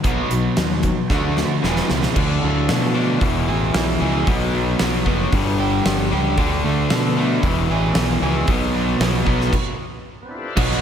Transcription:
0.04 fingered electric bass B1, overdriven electric guitar B2 F#3 B3 D#4, kick, closed hi-hat
0.08 overdriven electric guitar F#4
0.30 fingered electric bass B1, overdriven electric guitar B2 F#3, closed hi-hat
0.57 fingered electric bass D#2, overdriven electric guitar B2 F#3, snare, closed hi-hat
0.83 overdriven electric guitar B2 F#3, kick, closed hi-hat
1.10 fingered electric bass D2, overdriven electric guitar D3 A3 D4, kick, snare
1.14 overdriven electric guitar F#4
1.37 overdriven electric guitar D3 A3, snare
1.62 fingered electric bass E1, overdriven electric guitar E2 B2 E3 G#3 B3, snare
1.67 overdriven electric guitar G#4
1.77 snare
1.87 fingered electric bass C#2, overdriven electric guitar E2 B2, snare
2.03 snare
2.14 fingered electric bass D2, overdriven electric guitar D3 A3 D4, kick, crash
2.43 fingered electric bass D2, overdriven electric guitar F#3
2.69 fingered electric bass B2, overdriven electric guitar F#3, snare, open hi-hat
2.94 overdriven electric guitar D3 A3 D4
3.19 fingered electric bass E1, overdriven electric guitar E2 B2 E3, kick, open hi-hat
3.48 fingered electric bass A1, overdriven electric guitar G#4
3.74 fingered electric bass B1, overdriven electric guitar E4, snare, open hi-hat
4.00 fingered electric bass C#2, overdriven electric guitar E2 B2 E3 G#4
4.26 fingered electric bass B1, overdriven electric guitar B2 F#3 B3, kick, open hi-hat
4.54 overdriven electric guitar F#3
4.79 fingered electric bass B1, overdriven electric guitar F#3, snare, open hi-hat
5.05 fingered electric bass F#1, overdriven electric guitar B2 F#3 B3, kick
5.32 fingered electric bass G1, overdriven electric guitar G2 D3 G3, kick, open hi-hat
5.60 overdriven electric guitar G4
5.85 fingered electric bass G1, overdriven electric guitar D4, snare, open hi-hat
6.10 fingered electric bass C#2, overdriven electric guitar G2 D3 G3 G4
6.37 fingered electric bass D2, overdriven electric guitar D3 A3 D4, kick, open hi-hat
6.64 fingered electric bass D2, overdriven electric guitar A3
6.90 fingered electric bass B2, overdriven electric guitar D3, snare, open hi-hat
7.17 overdriven electric guitar D3 A3 D4
7.43 fingered electric bass E1, overdriven electric guitar E2 B2 E3, kick, open hi-hat
7.70 fingered electric bass A1, overdriven electric guitar G#4
7.95 fingered electric bass B1, overdriven electric guitar B3, snare, open hi-hat
8.22 fingered electric bass C#2, overdriven electric guitar E2 B2 E3 G#4
8.47 fingered electric bass B1, overdriven electric guitar B2 F#3 B3, kick, open hi-hat
8.74 overdriven electric guitar F#3
9.00 fingered electric bass B1, overdriven electric guitar F#3, snare, open hi-hat
9.25 fingered electric bass B1, overdriven electric guitar B2 F#3 B3, kick
9.41 snare
9.53 kick, crash
10.22 tonewheel organ B3 C4
10.28 tonewheel organ D4 E4
10.35 tonewheel organ F4 G4 A4
10.42 tonewheel organ B4 C5
10.48 tonewheel organ D5 E5
10.53 overdriven electric guitar B2 F#3, tonewheel organ F#4 B4 D#5 F5 F#5
10.57 fingered electric bass B1, overdriven electric guitar B2 F#3 B3 D#4 F#4, kick, crash
10.71 snare

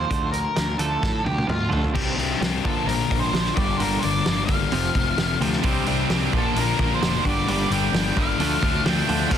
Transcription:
Already playing: lead electric guitar C5
0.10 picked electric bass D2, clean electric guitar D3 F3 A3, kick, closed hi-hat
0.32 clean electric guitar D3, lead electric guitar A#4, closed hi-hat
0.56 picked electric bass D2, clean electric guitar D3 F3, snare, closed hi-hat
0.78 picked electric bass D2, clean electric guitar D3 F3 A3, lead electric guitar A4, closed hi-hat
1.02 picked electric bass A2, clean electric guitar D3 F3, kick, snare
1.24 picked electric bass D2, clean electric guitar D3 F3, lead electric guitar G4, high tom
1.38 high tom
1.47 picked electric bass D2, clean electric guitar D3 F3, lead electric guitar F4, mid tom
1.69 picked electric bass D2, clean electric guitar D3 F3 A3, floor tom
1.84 floor tom
1.94 picked electric bass C2, distorted electric guitar C3 G3 C4 D4, kick, crash
2.17 picked electric bass C2, distorted electric guitar C3 G3 C4 D4, open hi-hat
2.41 picked electric bass C2, distorted electric guitar C3 G3 C4 D4, snare, open hi-hat
2.64 picked electric bass A#1, distorted electric guitar A#2 D3 F3 A#3 D4, lead electric guitar A4, kick, open hi-hat
2.87 picked electric bass A#1, distorted electric guitar A#2 D3 F3 A#3 D4, lead electric guitar A#4, open hi-hat
3.11 picked electric bass A#1, distorted electric guitar A#2 D3 F3 A#3 D4, kick, open hi-hat
3.19 lead electric guitar C5
3.33 picked electric bass A#1, distorted electric guitar A#2 D3 F3 A#3 D4, snare, open hi-hat
3.45 snare
3.54 picked electric bass G1, distorted electric guitar G2 D3 G3, lead electric guitar D5, kick, open hi-hat
3.58 distorted electric guitar A#3 D4
3.77 picked electric bass G1, distorted electric guitar G2 D3 G3, lead electric guitar A#4, open hi-hat
3.81 distorted electric guitar A#3 D4
3.99 distorted electric guitar G2, lead electric guitar D5, open hi-hat
4.04 picked electric bass G1, distorted electric guitar D3 G3 A#3 D4
4.26 picked electric bass G1, distorted electric guitar G2 D3 G3 A#3 D4, snare, open hi-hat
4.45 picked electric bass G1, distorted electric guitar G2 D3, lead electric guitar F5, kick, open hi-hat
4.50 distorted electric guitar G3 A#3 D4
4.72 picked electric bass F1, distorted electric guitar F2 C3 F3 A3 C4, open hi-hat
4.95 picked electric bass F1, distorted electric guitar F2 C3 F3 A3 C4, kick, open hi-hat
5.18 picked electric bass F1, distorted electric guitar F2 C3 F3 A3 C4, snare, open hi-hat
5.41 picked electric bass D2, distorted electric guitar F2 C3 F3 A3 C4, open hi-hat
5.53 snare
5.63 picked electric bass C2, distorted electric guitar C3 G3 C4 D4, kick, open hi-hat
5.86 picked electric bass C2, distorted electric guitar C3 G3 C4 D4, open hi-hat
6.10 picked electric bass C2, distorted electric guitar C3 G3 C4 D4, snare, open hi-hat
6.32 picked electric bass A#1, distorted electric guitar A#2 D3 F3 A#3 D4, kick, open hi-hat
6.38 lead electric guitar A4
6.55 picked electric bass A#1, distorted electric guitar A#2 D3 F3 A#3 D4, lead electric guitar A#4, open hi-hat
6.78 picked electric bass A#1, distorted electric guitar A#2 D3 F3 A#3 D4, kick, open hi-hat
6.94 lead electric guitar C5
7.02 picked electric bass F1, distorted electric guitar A#2 D3 F3 A#3 D4, snare, open hi-hat
7.24 picked electric bass G1, distorted electric guitar G2 D3 G3 A#3 D4, lead electric guitar D5, kick, open hi-hat
7.47 picked electric bass G1, distorted electric guitar G2 D3 G3 A#3 D4, lead electric guitar D5, open hi-hat
7.70 picked electric bass G1, distorted electric guitar G2 D3 G3 A#3 D4, lead electric guitar G5, open hi-hat
7.92 picked electric bass G1, distorted electric guitar G2 D3 G3 A#3 D4, snare, open hi-hat
8.15 picked electric bass G1, distorted electric guitar G2 D3 G3 A#3 D4, lead electric guitar F5, kick, open hi-hat
8.38 picked electric bass D2, distorted electric guitar D3 F3 A3 D4, open hi-hat
8.61 picked electric bass D2, distorted electric guitar D3 F3 A3 D4, kick, open hi-hat
8.84 picked electric bass D2, distorted electric guitar D3 F3 A3 D4, lead electric guitar G5, snare, open hi-hat
8.98 snare
9.07 picked electric bass D2, distorted electric guitar D3 F3 A3 D4, open hi-hat
9.30 picked electric bass F1, distorted electric guitar F3 A3 C4 F4 A4, tonewheel organ A4 C5 F5 C6, lead electric guitar F5, kick, crash

